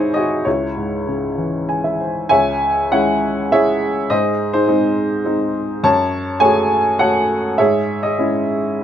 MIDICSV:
0, 0, Header, 1, 2, 480
1, 0, Start_track
1, 0, Key_signature, 4, "minor"
1, 0, Tempo, 612245
1, 359, Time_signature, 3, 2, 24, 8
1, 2769, Tempo, 579151
1, 6129, Tempo, 614125
1, 7107, End_track
2, 0, Start_track
2, 0, Title_t, "Upright piano"
2, 0, Program_c, 0, 0
2, 0, Control_c, 0, 64, 127
2, 0, Note_on_c, 0, 44, 43
2, 0, Note_on_c, 0, 48, 39
2, 0, Note_on_c, 0, 56, 43
2, 0, Note_on_c, 0, 63, 52
2, 0, Note_on_c, 0, 64, 48
2, 0, Note_on_c, 0, 68, 44
2, 0, Note_on_c, 0, 72, 62
2, 0, Note_on_c, 0, 73, 62
2, 0, Note_on_c, 0, 75, 65
2, 0, Note_on_c, 0, 80, 66
2, 97, Note_off_c, 0, 48, 0
2, 108, Note_off_c, 0, 75, 0
2, 108, Note_on_c, 0, 75, 65
2, 109, Note_off_c, 0, 63, 0
2, 122, Note_off_c, 0, 72, 0
2, 124, Note_on_c, 0, 66, 46
2, 326, Note_off_c, 0, 44, 0
2, 332, Note_off_c, 0, 56, 0
2, 343, Note_off_c, 0, 66, 0
2, 351, Note_off_c, 0, 73, 0
2, 351, Note_on_c, 0, 73, 58
2, 359, Note_off_c, 0, 75, 0
2, 365, Note_on_c, 0, 37, 43
2, 366, Note_off_c, 0, 64, 0
2, 366, Note_on_c, 0, 64, 42
2, 369, Control_c, 0, 64, 0
2, 372, Note_off_c, 0, 68, 0
2, 375, Note_off_c, 0, 80, 0
2, 505, Control_c, 0, 64, 127
2, 601, Note_on_c, 0, 44, 31
2, 841, Note_on_c, 0, 49, 33
2, 1075, Note_on_c, 0, 52, 31
2, 1286, Note_off_c, 0, 73, 0
2, 1294, Note_off_c, 0, 64, 0
2, 1323, Note_on_c, 0, 80, 41
2, 1440, Note_off_c, 0, 80, 0
2, 1444, Note_on_c, 0, 76, 39
2, 1545, Note_off_c, 0, 44, 0
2, 1562, Note_off_c, 0, 76, 0
2, 1573, Note_on_c, 0, 72, 36
2, 1788, Note_off_c, 0, 37, 0
2, 1791, Note_off_c, 0, 49, 0
2, 1796, Note_off_c, 0, 52, 0
2, 1798, Note_on_c, 0, 80, 83
2, 1800, Note_off_c, 0, 72, 0
2, 1809, Note_on_c, 0, 73, 58
2, 1811, Note_on_c, 0, 76, 64
2, 1817, Note_on_c, 0, 37, 46
2, 1826, Control_c, 0, 64, 0
2, 1945, Control_c, 0, 64, 127
2, 2259, Note_off_c, 0, 80, 0
2, 2284, Note_off_c, 0, 73, 0
2, 2287, Note_on_c, 0, 78, 73
2, 2288, Note_on_c, 0, 56, 43
2, 2291, Note_on_c, 0, 61, 38
2, 2293, Note_on_c, 0, 64, 43
2, 2296, Note_on_c, 0, 73, 51
2, 2504, Note_off_c, 0, 76, 0
2, 2747, Note_off_c, 0, 56, 0
2, 2748, Note_off_c, 0, 61, 0
2, 2751, Note_off_c, 0, 64, 0
2, 2756, Note_off_c, 0, 73, 0
2, 2759, Note_on_c, 0, 56, 36
2, 2760, Note_on_c, 0, 61, 35
2, 2761, Note_on_c, 0, 76, 79
2, 2763, Note_on_c, 0, 64, 43
2, 2763, Note_on_c, 0, 68, 55
2, 2767, Note_on_c, 0, 73, 56
2, 2778, Note_off_c, 0, 78, 0
2, 3210, Note_off_c, 0, 76, 0
2, 3211, Note_off_c, 0, 68, 0
2, 3214, Note_off_c, 0, 73, 0
2, 3215, Note_off_c, 0, 37, 0
2, 3228, Note_off_c, 0, 56, 0
2, 3228, Note_off_c, 0, 61, 0
2, 3230, Note_off_c, 0, 64, 0
2, 3239, Note_on_c, 0, 75, 77
2, 3240, Note_on_c, 0, 44, 54
2, 3243, Note_on_c, 0, 68, 57
2, 3243, Note_on_c, 0, 72, 60
2, 3260, Control_c, 0, 64, 0
2, 3410, Control_c, 0, 64, 127
2, 3587, Note_off_c, 0, 72, 0
2, 3596, Note_off_c, 0, 68, 0
2, 3600, Note_on_c, 0, 72, 78
2, 3606, Note_on_c, 0, 63, 44
2, 3608, Note_on_c, 0, 68, 47
2, 3611, Note_off_c, 0, 75, 0
2, 3711, Note_off_c, 0, 63, 0
2, 3715, Note_on_c, 0, 56, 43
2, 3721, Note_on_c, 0, 60, 42
2, 3723, Note_on_c, 0, 63, 49
2, 4179, Note_off_c, 0, 56, 0
2, 4185, Note_off_c, 0, 60, 0
2, 4187, Note_off_c, 0, 63, 0
2, 4191, Note_on_c, 0, 56, 36
2, 4198, Note_on_c, 0, 60, 37
2, 4200, Note_on_c, 0, 63, 44
2, 4407, Note_off_c, 0, 72, 0
2, 4411, Note_off_c, 0, 68, 0
2, 4641, Note_off_c, 0, 44, 0
2, 4658, Note_off_c, 0, 56, 0
2, 4661, Note_off_c, 0, 60, 0
2, 4662, Note_off_c, 0, 63, 0
2, 4677, Note_on_c, 0, 42, 59
2, 4679, Note_on_c, 0, 81, 95
2, 4682, Note_on_c, 0, 73, 71
2, 4690, Control_c, 0, 64, 0
2, 4838, Control_c, 0, 64, 127
2, 5143, Note_off_c, 0, 73, 0
2, 5147, Note_on_c, 0, 80, 85
2, 5149, Note_on_c, 0, 57, 48
2, 5155, Note_on_c, 0, 73, 55
2, 5158, Note_on_c, 0, 66, 43
2, 5162, Note_on_c, 0, 68, 53
2, 5176, Note_off_c, 0, 81, 0
2, 5627, Note_off_c, 0, 57, 0
2, 5631, Note_off_c, 0, 66, 0
2, 5633, Note_off_c, 0, 68, 0
2, 5634, Note_off_c, 0, 73, 0
2, 5638, Note_on_c, 0, 78, 83
2, 5645, Note_on_c, 0, 69, 59
2, 5646, Note_on_c, 0, 57, 40
2, 5646, Note_on_c, 0, 73, 55
2, 5651, Note_on_c, 0, 66, 39
2, 5655, Note_off_c, 0, 80, 0
2, 6096, Note_off_c, 0, 42, 0
2, 6096, Note_off_c, 0, 69, 0
2, 6096, Note_off_c, 0, 73, 0
2, 6115, Note_off_c, 0, 57, 0
2, 6117, Note_off_c, 0, 66, 0
2, 6124, Note_on_c, 0, 76, 70
2, 6132, Note_on_c, 0, 44, 49
2, 6134, Note_on_c, 0, 68, 58
2, 6135, Note_on_c, 0, 73, 54
2, 6139, Note_off_c, 0, 78, 0
2, 6139, Control_c, 0, 64, 0
2, 6267, Control_c, 0, 64, 127
2, 6475, Note_on_c, 0, 75, 64
2, 6477, Note_off_c, 0, 68, 0
2, 6488, Note_off_c, 0, 76, 0
2, 6489, Note_on_c, 0, 68, 41
2, 6597, Note_on_c, 0, 56, 43
2, 6600, Note_on_c, 0, 61, 40
2, 6603, Note_on_c, 0, 64, 46
2, 6813, Note_off_c, 0, 73, 0
2, 7061, Note_off_c, 0, 44, 0
2, 7073, Note_off_c, 0, 56, 0
2, 7074, Note_off_c, 0, 61, 0
2, 7076, Note_off_c, 0, 64, 0
2, 7099, Control_c, 0, 64, 0
2, 7107, Note_off_c, 0, 68, 0
2, 7107, Note_off_c, 0, 75, 0
2, 7107, End_track
0, 0, End_of_file